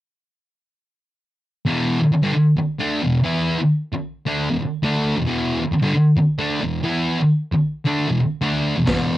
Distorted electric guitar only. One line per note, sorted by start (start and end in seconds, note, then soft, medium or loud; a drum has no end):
1.65 1.99 E2 medium
1.65 1.99 B2 loud
1.65 2.00 E3 medium
2.01 muted distorted electric guitar stroke medium
2.12 muted distorted electric guitar stroke medium
2.22 2.33 G2 loud
2.22 2.33 D3 medium
2.34 muted distorted electric guitar stroke medium
2.57 muted distorted electric guitar stroke medium
2.79 3.01 D3 medium
2.79 3.01 A3 medium
2.79 3.01 D4 loud
3.02 3.19 E2 medium
3.02 3.20 B2 medium
3.24 3.57 E3 loud
3.24 3.57 B3 medium
3.24 3.58 E4 loud
3.93 muted distorted electric guitar stroke medium
4.26 4.48 D3 medium
4.26 4.48 A3 medium
4.26 4.48 D4 medium
4.49 4.60 E2 medium
4.49 4.60 B2 medium
4.61 muted distorted electric guitar stroke medium
4.83 5.15 D3 medium
4.83 5.16 A3 loud
4.83 5.16 D4 loud
5.16 5.26 E2 medium
5.16 5.26 B2 medium
5.27 5.60 E2 loud
5.27 5.61 B2 medium
5.27 5.61 E3 loud
5.61 muted distorted electric guitar stroke medium
5.72 muted distorted electric guitar stroke medium
5.82 5.93 G2 medium
5.82 5.94 D3 loud
5.94 muted distorted electric guitar stroke medium
6.17 muted distorted electric guitar stroke medium
6.38 6.61 D3 medium
6.38 6.62 A3 loud
6.38 6.62 D4 loud
6.61 6.80 E2 medium
6.61 6.80 B2 medium
6.84 7.17 E3 medium
6.84 7.18 B3 loud
6.84 7.18 E4 loud
7.52 muted distorted electric guitar stroke medium
7.85 8.07 D3 medium
7.85 8.08 A3 loud
7.85 8.08 D4 loud
8.08 8.19 E2 medium
8.08 8.20 B2 medium
8.20 muted distorted electric guitar stroke medium
8.41 8.75 D3 loud
8.41 8.76 A3 medium
8.41 8.76 D4 loud
8.76 8.85 E2 medium
8.76 8.86 B2 medium
8.86 9.18 E2 medium
8.86 9.18 B2 loud
8.86 9.18 E3 loud